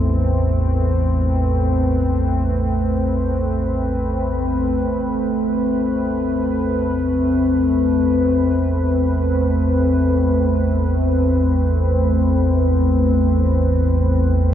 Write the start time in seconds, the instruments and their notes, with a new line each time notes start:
Already playing: synth drone A1 E2, ambient pad A3 C4 B4, singing bowl B4
4.79 synth drone A1 E2